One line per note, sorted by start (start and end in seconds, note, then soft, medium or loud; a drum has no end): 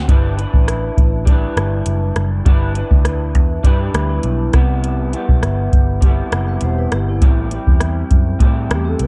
0.00 0.12 D3 medium
0.08 0.44 G1 medium
0.08 0.38 G3 medium
0.08 0.38 D4 medium
0.08 0.38 E4 medium
0.08 0.36 B4 medium
0.08 kick loud
0.08 closed hi-hat medium
0.37 1.27 D4 soft
0.37 1.31 E4 soft
0.37 1.32 B4 soft
0.37 closed hi-hat soft
0.54 0.89 A1 medium
0.54 kick medium
0.68 cross-stick medium
0.68 closed hi-hat medium
0.98 1.45 A1 medium
0.98 kick medium
0.98 closed hi-hat soft
1.25 2.45 G3 medium
1.25 2.45 D4 medium
1.25 kick medium
1.25 closed hi-hat medium
1.31 2.47 E4 medium
1.31 2.48 B4 medium
1.57 1.81 G1 medium
1.57 cross-stick medium
1.57 closed hi-hat soft
1.86 2.10 F#1 medium
1.86 closed hi-hat medium
2.16 2.40 F#1 medium
2.16 cross-stick medium
2.16 closed hi-hat soft
2.46 2.82 G1 medium
2.46 2.76 G3 medium
2.46 2.76 D4 medium
2.46 2.76 E4 medium
2.46 2.74 B4 medium
2.46 kick medium
2.46 closed hi-hat medium
2.75 3.66 E4 soft
2.75 3.66 B4 soft
2.75 closed hi-hat soft
2.79 3.64 D4 soft
2.91 3.35 D2 medium
2.91 kick medium
3.05 cross-stick medium
3.05 closed hi-hat medium
3.35 3.59 E2 medium
3.35 kick medium
3.35 closed hi-hat soft
3.63 3.88 G2 medium
3.63 4.55 G3 medium
3.63 4.54 D4 medium
3.63 3.79 E4 medium
3.63 4.53 E4 medium
3.63 3.79 B4 medium
3.63 4.59 B4 medium
3.63 kick medium
3.63 closed hi-hat medium
3.79 4.08 D4 medium
3.79 4.07 G4 medium
3.94 4.18 D2 medium
3.94 cross-stick medium
3.94 closed hi-hat soft
4.09 4.52 B3 medium
4.09 4.52 E4 medium
4.23 4.48 B1 medium
4.23 closed hi-hat medium
4.53 5.13 C2 medium
4.53 5.14 C3 soft
4.53 5.16 G3 medium
4.53 5.13 B3 medium
4.53 5.12 E4 medium
4.53 kick medium
4.53 cross-stick medium
4.53 closed hi-hat soft
4.84 closed hi-hat medium
5.13 6.04 G3 soft
5.13 6.03 B3 soft
5.13 6.08 E4 soft
5.13 closed hi-hat soft
5.29 5.41 B1 medium
5.29 kick medium
5.43 5.67 G1 medium
5.43 cross-stick medium
5.43 closed hi-hat medium
5.73 6.21 G1 medium
5.73 kick medium
5.73 closed hi-hat soft
6.01 7.21 C3 medium
6.01 7.22 G3 medium
6.01 kick medium
6.01 closed hi-hat medium
6.06 7.23 B3 medium
6.06 7.23 E4 medium
6.32 6.56 F#1 medium
6.32 cross-stick loud
6.32 closed hi-hat soft
6.47 6.62 B4 medium
6.47 6.62 E5 medium
6.61 6.86 E1 medium
6.61 6.77 G4 medium
6.61 6.77 C5 medium
6.61 closed hi-hat medium
6.78 6.92 E4 medium
6.78 6.92 B4 medium
6.92 7.22 G1 medium
6.92 7.07 C4 medium
6.92 7.07 G4 medium
6.92 cross-stick medium
6.92 closed hi-hat soft
7.09 7.37 B3 medium
7.09 7.36 E4 medium
7.22 7.58 A1 medium
7.22 7.51 A2 medium
7.22 7.52 G3 medium
7.22 7.52 C4 medium
7.22 7.50 E4 medium
7.22 kick loud
7.22 closed hi-hat medium
7.51 8.42 G3 soft
7.51 8.42 C4 soft
7.51 8.46 E4 soft
7.51 closed hi-hat soft
7.67 8.02 E2 medium
7.67 kick medium
7.80 cross-stick medium
7.80 closed hi-hat medium
8.11 8.35 F#2 medium
8.11 kick medium
8.11 closed hi-hat soft
8.39 9.07 A2 medium
8.39 8.71 A2 medium
8.39 9.07 G3 medium
8.39 kick medium
8.39 closed hi-hat medium
8.45 9.07 C4 medium
8.45 9.07 E4 medium
8.70 8.94 E2 medium
8.70 8.85 A3 medium
8.70 8.85 E4 medium
8.70 8.90 G4 medium
8.70 cross-stick medium
8.70 closed hi-hat medium
8.85 8.99 C4 medium
8.85 8.99 G4 medium
8.85 9.04 A4 medium
8.99 9.07 C2 medium
8.99 9.07 E4 medium
8.99 9.07 A4 medium
8.99 9.07 B4 medium
8.99 closed hi-hat medium